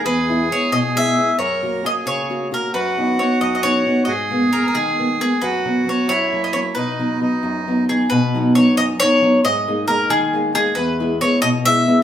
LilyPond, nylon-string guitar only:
\new Staff \with { instrumentName = "Nylon-string guitar" } { \time 6/8 \key b \major \tempo 4. = 90 e,8 <gis b e'>8 <gis b e'>8 b,8 <gis b e'>8 <gis b e'>8 | fis,8 <ais cis' fis'>8 <ais cis' fis'>8 cis8 <ais cis' fis'>8 <ais cis' fis'>8 | fis,8 <b cis' dis'>8 <b cis' dis'>8 fis,8 <b cis' dis'>8 <b cis' dis'>8 | gis,8 <gis ais b>8 <gis ais b>8 dis8 <gis ais b>8 <gis ais b>8 |
fis,8 <fis b cis'>8 <fis b cis'>8 fis,8 <fis ais cis'>8 <fis ais cis'>8 | b,8 <fis b dis'>8 <fis b dis'>8 fis,8 <fis b dis'>8 <fis b dis'>8 | b,8 <fis b dis'>8 <fis b dis'>8 fis,8 <fis b dis'>8 <fis b dis'>8 | gis,8 <gis ais dis'>8 <gis ais dis'>8 dis8 <gis ais dis'>8 <gis ais dis'>8 |
e,8 <gis b e'>8 <gis b e'>8 b,8 <gis b e'>8 <gis b e'>8 | }